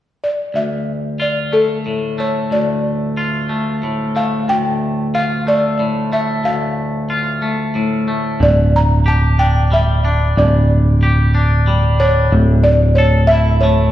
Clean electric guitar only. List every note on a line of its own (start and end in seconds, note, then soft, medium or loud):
0.54 2.51 D2 soft
1.20 3.17 F4 soft
1.52 2.18 A3 soft
1.86 3.50 A2 soft
2.18 3.49 A3 soft
2.51 4.48 D2 medium
3.17 5.14 F4 soft
3.49 4.15 A3 soft
3.83 5.47 A2 soft
4.16 5.47 A3 soft
4.49 6.44 D2 soft
5.15 6.78 F4 soft
5.47 6.12 A3 soft
5.79 7.43 A2 soft
6.12 7.42 A3 soft
6.44 8.40 D2 soft
7.10 8.41 F4 soft
7.42 8.07 A3 soft
7.75 8.41 A2 medium
8.08 8.43 A3 soft
8.40 10.04 G2 medium
9.06 10.69 G4 soft
9.39 10.03 D4 soft
9.72 11.35 G3 soft
10.05 11.33 D4 soft
10.37 12.00 G2 medium
11.03 12.33 G4 soft
11.35 11.99 D4 soft
11.67 12.33 G3 medium
12.00 12.33 D4 medium
12.32 13.92 A2 medium
12.98 13.92 A4 soft
13.31 13.92 E4 soft
13.63 13.92 A3 soft